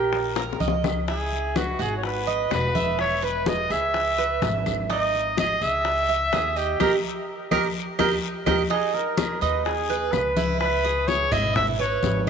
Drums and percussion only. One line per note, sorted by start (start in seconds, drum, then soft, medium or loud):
0.13 high bongo medium
0.13 high conga soft
0.13 long guiro medium
0.36 high bongo medium
0.36 high conga soft
0.53 low bongo medium
0.60 high conga medium
0.60 short guiro medium
0.68 low bongo medium
0.84 low bongo medium
0.84 high conga medium
0.84 short guiro medium
0.84 claves medium
1.08 high bongo medium
1.08 high conga soft
1.08 long guiro medium
1.32 high conga soft
1.56 high bongo medium
1.56 high conga medium
1.56 short guiro medium
1.56 claves medium
1.80 high conga soft
1.80 short guiro medium
2.03 high bongo medium
2.03 high conga soft
2.03 long guiro medium
2.28 high conga soft
2.51 high bongo medium
2.51 low bongo medium
2.51 high conga soft
2.51 short guiro medium
2.51 claves medium
2.75 high conga medium
2.75 short guiro medium
2.99 high bongo medium
2.99 high conga soft
2.99 long guiro medium
2.99 claves medium
3.23 high bongo soft
3.23 high conga soft
3.46 high bongo medium
3.46 high conga medium
3.46 short guiro medium
3.71 high bongo soft
3.71 short guiro medium
3.71 claves medium
3.94 high bongo medium
3.94 high conga soft
3.94 long guiro medium
4.18 high bongo soft
4.18 high conga soft
4.42 high bongo medium
4.42 low bongo medium
4.42 high conga medium
4.42 short guiro medium
4.66 high conga medium
4.66 short guiro medium
4.66 claves medium
4.90 high bongo medium
4.90 high conga soft
4.90 long guiro medium
5.14 high conga soft
5.37 high bongo medium
5.37 high conga medium
5.37 short guiro medium
5.37 claves medium
5.62 high conga soft
5.62 short guiro medium
5.85 high bongo medium
5.85 high conga soft
5.85 long guiro medium
6.09 high conga soft
6.33 high bongo medium
6.33 low bongo medium
6.33 high conga soft
6.33 short guiro medium
6.33 claves medium
6.57 short guiro medium
6.80 high bongo medium
6.80 high conga loud
6.80 long guiro loud
6.80 claves loud
7.52 high bongo medium
7.52 high conga medium
7.52 long guiro medium
7.52 claves medium
7.99 high bongo medium
7.99 high conga medium
7.99 long guiro medium
7.99 claves medium
8.46 high bongo loud
8.46 high conga loud
8.46 long guiro medium
8.46 claves loud
8.70 high bongo medium
8.70 high conga soft
8.70 long guiro medium
8.94 high bongo soft
8.94 high conga soft
9.17 high bongo medium
9.17 high conga loud
9.17 short guiro medium
9.17 claves medium
9.41 high conga soft
9.41 short guiro medium
9.65 high bongo medium
9.65 high conga soft
9.65 long guiro medium
9.89 high bongo soft
9.89 high conga soft
10.13 high bongo soft
10.13 low bongo medium
10.13 high conga soft
10.13 short guiro medium
10.13 claves medium
10.36 high bongo soft
10.36 high conga medium
10.36 short guiro medium
10.60 high bongo medium
10.60 high conga soft
10.60 long guiro medium
10.60 claves medium
10.84 high bongo soft
10.84 high conga soft
11.08 high bongo medium
11.08 high conga medium
11.08 short guiro medium
11.32 high conga soft
11.32 low conga medium
11.32 short guiro medium
11.32 claves medium
11.55 high bongo medium
11.55 high conga soft
11.55 low conga medium
11.55 long guiro medium
11.79 high bongo soft
11.79 high conga soft
12.03 high bongo soft
12.03 low bongo medium
12.03 high conga medium
12.03 short guiro medium